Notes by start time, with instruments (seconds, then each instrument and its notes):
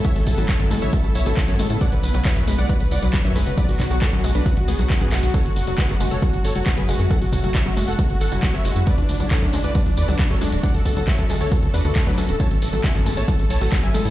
Already playing: ambient pad C#3 A3 B3 E4
0.05 synth arpeggio sound F#3, supersaw synth C#5 E5, kick, closed hi-hat, tambourine
0.16 analog synth bass A1, supersaw synth A4, open hi-hat, tambourine
0.27 analog synth bass A1, supersaw synth A4, kick, open hi-hat, tambourine
0.38 analog synth bass A1, synth arpeggio sound F#3, supersaw synth A4, closed hi-hat, tambourine
0.49 synth arpeggio sound F#3, supersaw synth A4 C#5, kick, clap, closed hi-hat, tambourine
0.60 analog synth bass A1, synth arpeggio sound F#2, supersaw synth A4, closed hi-hat, tambourine
0.71 analog synth bass A1, synth arpeggio sound G#3, supersaw synth A4, open hi-hat, tambourine
0.82 analog synth bass A1, supersaw synth C#5 E5, closed hi-hat, tambourine
0.93 synth arpeggio sound F#3, supersaw synth A4, kick, closed hi-hat, tambourine
1.04 analog synth bass A1, supersaw synth A4, closed hi-hat, tambourine
1.15 analog synth bass B1, supersaw synth C#5 E5, open hi-hat, tambourine
1.26 analog synth bass A1, synth arpeggio sound F#3, supersaw synth A4, closed hi-hat, tambourine
1.37 synth arpeggio sound F#3, supersaw synth A4, kick, clap, closed hi-hat, tambourine
1.48 analog synth bass A1, synth arpeggio sound F#2, supersaw synth A4 C#5, closed hi-hat, tambourine
1.59 analog synth bass A1, synth arpeggio sound G#3, supersaw synth A4, open hi-hat, tambourine
1.70 analog synth bass A2, supersaw synth A4, closed hi-hat, tambourine
1.81 ambient pad D3 F#3 F#4, synth arpeggio sound F#3, supersaw synth D5 F#5, kick, closed hi-hat, tambourine
1.92 analog synth bass B1, supersaw synth B4, closed hi-hat, tambourine
2.03 analog synth bass B1, supersaw synth B4, open hi-hat, tambourine
2.14 analog synth bass B1, synth arpeggio sound F#3, supersaw synth B4, closed hi-hat, tambourine
2.25 synth arpeggio sound F#3, supersaw synth C#5 E5, kick, clap, closed hi-hat, tambourine
2.36 analog synth bass B1, synth arpeggio sound F#2, supersaw synth B4, closed hi-hat, tambourine
2.47 analog synth bass B1, synth arpeggio sound G#3, supersaw synth B4, open hi-hat, tambourine
2.58 analog synth bass B1, supersaw synth D5 F#5, closed hi-hat, tambourine
2.69 synth arpeggio sound F#3, supersaw synth B4, kick, closed hi-hat, tambourine
2.80 analog synth bass B1, supersaw synth B4, closed hi-hat, tambourine
2.91 analog synth bass C#2, supersaw synth D5 F#5, open hi-hat, tambourine
3.02 analog synth bass B1, synth arpeggio sound F#3, supersaw synth B4, closed hi-hat, tambourine
3.13 synth arpeggio sound F#3, supersaw synth B4, kick, clap, closed hi-hat, tambourine
3.24 analog synth bass B1, synth arpeggio sound F#2, supersaw synth C#5 E5, closed hi-hat, tambourine
3.35 analog synth bass B1, synth arpeggio sound G#3, supersaw synth B4, open hi-hat, tambourine
3.47 analog synth bass F#1, supersaw synth B4, closed hi-hat, tambourine
3.58 synth arpeggio sound F#3, supersaw synth B4 D5, kick, closed hi-hat, tambourine
3.69 analog synth bass B1, supersaw synth F#4, open hi-hat, tambourine
3.80 analog synth bass B1, supersaw synth F#4, kick, clap, open hi-hat, tambourine
3.91 analog synth bass B1, synth arpeggio sound F#3, supersaw synth F#4, closed hi-hat, tambourine
4.02 synth arpeggio sound F#3, supersaw synth A4 C#5, kick, clap, closed hi-hat, tambourine
4.13 analog synth bass B1, synth arpeggio sound F#2, supersaw synth F#4, closed hi-hat, tambourine
4.24 analog synth bass B1, synth arpeggio sound G#3, supersaw synth F#4, open hi-hat, tambourine
4.35 analog synth bass B1, supersaw synth D4 B4, closed hi-hat, tambourine
4.46 synth arpeggio sound F#3, supersaw synth F#4, kick, closed hi-hat, tambourine
4.57 analog synth bass B1, supersaw synth F#4, closed hi-hat, tambourine
4.68 analog synth bass C#2, supersaw synth B3 G#4, open hi-hat, tambourine
4.79 analog synth bass B1, synth arpeggio sound F#3, supersaw synth F#4, closed hi-hat, tambourine
4.90 synth arpeggio sound F#3, supersaw synth F#4, kick, clap, closed hi-hat, tambourine
5.01 analog synth bass B1, synth arpeggio sound F#2, supersaw synth B3 G#4, closed hi-hat, tambourine
5.12 analog synth bass B1, synth arpeggio sound G#3, supersaw synth F#4, clap, open hi-hat, tambourine
5.23 analog synth bass B1, supersaw synth F#4, closed hi-hat, tambourine
5.34 ambient pad C#3 F#3 A3, synth arpeggio sound F#3, supersaw synth A4 C#5, kick, closed hi-hat, tambourine
5.45 analog synth bass F#1, supersaw synth F#4, closed hi-hat, tambourine
5.56 analog synth bass F#1, supersaw synth F#4, open hi-hat, tambourine
5.67 analog synth bass F#1, synth arpeggio sound F#3, supersaw synth F#4, closed hi-hat, tambourine
5.78 synth arpeggio sound F#3, supersaw synth G#4 B4, kick, clap, closed hi-hat, tambourine
5.89 analog synth bass F#1, synth arpeggio sound F#2, supersaw synth F#4, closed hi-hat, tambourine
6.00 analog synth bass F#1, synth arpeggio sound G#3, supersaw synth F#4, open hi-hat, tambourine
6.11 analog synth bass F#1, supersaw synth A4 C#5, closed hi-hat, tambourine
6.22 synth arpeggio sound F#3, supersaw synth F#4, kick, closed hi-hat, tambourine
6.33 analog synth bass F#1, supersaw synth F#4, closed hi-hat, tambourine
6.44 analog synth bass G#1, supersaw synth A4 C#5, open hi-hat, tambourine
6.55 analog synth bass F#1, synth arpeggio sound F#3, supersaw synth F#4, closed hi-hat, tambourine
6.66 synth arpeggio sound F#3, supersaw synth F#4, kick, clap, closed hi-hat, tambourine
6.77 analog synth bass F#1, synth arpeggio sound F#2, supersaw synth G#4 B4, closed hi-hat, tambourine
6.88 analog synth bass F#1, synth arpeggio sound G#3, supersaw synth F#4, open hi-hat, tambourine
6.99 analog synth bass F#2, supersaw synth F#4, closed hi-hat, tambourine
7.11 synth arpeggio sound F#3, ambient pad E4, supersaw synth A4 F#5, kick, closed hi-hat, tambourine
7.21 analog synth bass F#1, supersaw synth F#4, open hi-hat, tambourine
7.33 analog synth bass F#1, supersaw synth F#4, kick, open hi-hat, tambourine
7.44 analog synth bass F#1, synth arpeggio sound F#3, supersaw synth F#4, closed hi-hat, tambourine
7.55 synth arpeggio sound F#3, supersaw synth C#5 E5, kick, clap, closed hi-hat
7.66 analog synth bass F#1, synth arpeggio sound F#2, supersaw synth F#4, closed hi-hat, tambourine
7.77 analog synth bass F#1, synth arpeggio sound G#3, supersaw synth F#4, open hi-hat, tambourine
7.88 analog synth bass F#1, supersaw synth A4 F#5, closed hi-hat, tambourine
7.99 synth arpeggio sound F#3, supersaw synth F#4, kick, closed hi-hat, tambourine
8.10 analog synth bass F#1, supersaw synth F#4, closed hi-hat, tambourine
8.21 analog synth bass G#1, supersaw synth A4 F#5, open hi-hat, tambourine
8.32 analog synth bass F#1, synth arpeggio sound F#3, supersaw synth F#4, closed hi-hat, tambourine
8.43 synth arpeggio sound F#3, supersaw synth F#4, kick, clap, closed hi-hat, tambourine
8.54 analog synth bass F#1, synth arpeggio sound F#2, supersaw synth C#5 E5, closed hi-hat, tambourine
8.65 analog synth bass F#1, synth arpeggio sound G#3, supersaw synth F#4, open hi-hat, tambourine
8.76 analog synth bass F#2, supersaw synth F#4, closed hi-hat, tambourine
8.87 ambient pad D3 A3 B3 F#4, synth arpeggio sound F#3, supersaw synth B4 D5, kick, closed hi-hat, tambourine
8.98 analog synth bass D2, supersaw synth D4, closed hi-hat, tambourine
9.09 analog synth bass D2, supersaw synth D4, open hi-hat, tambourine
9.20 analog synth bass D2, synth arpeggio sound F#3, supersaw synth D4, closed hi-hat, tambourine
9.31 synth arpeggio sound F#3, supersaw synth A4 C#5, kick, clap, closed hi-hat, tambourine
9.42 analog synth bass D2, synth arpeggio sound F#2, supersaw synth D4, closed hi-hat, tambourine
9.53 analog synth bass D2, synth arpeggio sound G#3, supersaw synth D4, open hi-hat, tambourine
9.64 analog synth bass D2, supersaw synth B4 D5, closed hi-hat, tambourine
9.75 synth arpeggio sound F#3, supersaw synth D4, kick, closed hi-hat, tambourine
9.86 analog synth bass D2, supersaw synth D4, closed hi-hat, tambourine
9.97 analog synth bass E2, supersaw synth B4 D5, open hi-hat, tambourine
10.08 analog synth bass D2, synth arpeggio sound F#3, supersaw synth D4, closed hi-hat, tambourine
10.19 synth arpeggio sound F#3, supersaw synth D4, kick, clap, closed hi-hat, tambourine
10.30 analog synth bass D2, synth arpeggio sound F#2, supersaw synth A4 C#5, closed hi-hat, tambourine
10.41 analog synth bass D2, synth arpeggio sound G#3, supersaw synth D4, open hi-hat, tambourine
10.52 analog synth bass D1, supersaw synth D4, closed hi-hat, tambourine
10.63 synth arpeggio sound F#3, supersaw synth D5 F#5, kick, closed hi-hat, tambourine
10.74 analog synth bass D2, supersaw synth A4, open hi-hat, tambourine
10.85 analog synth bass D2, supersaw synth A4, kick, open hi-hat, tambourine
10.96 analog synth bass D2, synth arpeggio sound F#3, supersaw synth A4, closed hi-hat, tambourine
11.07 supersaw synth C#5 E5, kick, clap, closed hi-hat, tambourine
11.18 analog synth bass D2, synth arpeggio sound F#2, supersaw synth A4, closed hi-hat, tambourine
11.29 analog synth bass D2, synth arpeggio sound G#3, supersaw synth A4, open hi-hat, tambourine
11.40 analog synth bass D2, supersaw synth A4 C#5, closed hi-hat, tambourine
11.52 synth arpeggio sound F#3, supersaw synth A4, kick, closed hi-hat, tambourine
11.62 analog synth bass D2, supersaw synth A4, closed hi-hat, tambourine
11.74 analog synth bass E2, supersaw synth D4 B4, open hi-hat, tambourine
11.85 analog synth bass D2, synth arpeggio sound F#2, supersaw synth A4, closed hi-hat, tambourine
11.96 synth arpeggio sound A3, supersaw synth A4, kick, clap, closed hi-hat, tambourine
12.07 analog synth bass D2, synth arpeggio sound F#3, supersaw synth D4 B4, closed hi-hat, tambourine
12.18 analog synth bass D2, synth arpeggio sound C#4, supersaw synth A4, open hi-hat, tambourine
12.29 analog synth bass D1, supersaw synth A4, closed hi-hat, tambourine
12.40 ambient pad C#3 E4, synth arpeggio sound F#3, supersaw synth C#5 A5, kick, closed hi-hat, tambourine
12.51 analog synth bass A1, supersaw synth A4, closed hi-hat, tambourine
12.62 analog synth bass A1, supersaw synth A4, open hi-hat, ride, tambourine
12.73 analog synth bass A1, synth arpeggio sound F#3, supersaw synth A4, closed hi-hat, tambourine
12.84 synth arpeggio sound F#3, supersaw synth E5 G#5, kick, clap, closed hi-hat, tambourine
12.95 analog synth bass A1, synth arpeggio sound F#2, supersaw synth A4, closed hi-hat, tambourine
13.06 analog synth bass A1, synth arpeggio sound G#3, supersaw synth A4, open hi-hat, ride, tambourine
13.17 analog synth bass A1, supersaw synth C#5 A5, closed hi-hat, tambourine
13.28 synth arpeggio sound F#3, supersaw synth A4, kick, closed hi-hat, tambourine
13.39 analog synth bass A1, supersaw synth A4, closed hi-hat, tambourine
13.50 analog synth bass B1, supersaw synth C#5 A5, open hi-hat, ride, tambourine
13.61 analog synth bass A1, synth arpeggio sound F#3, supersaw synth A4, closed hi-hat, tambourine
13.72 synth arpeggio sound F#3, supersaw synth A4, kick, clap, closed hi-hat, tambourine
13.83 analog synth bass A1, synth arpeggio sound F#2, supersaw synth E5 G#5, closed hi-hat, tambourine
13.94 analog synth bass A1, synth arpeggio sound G#3, supersaw synth A4, open hi-hat, ride, tambourine
14.05 analog synth bass A2, supersaw synth A4, closed hi-hat, tambourine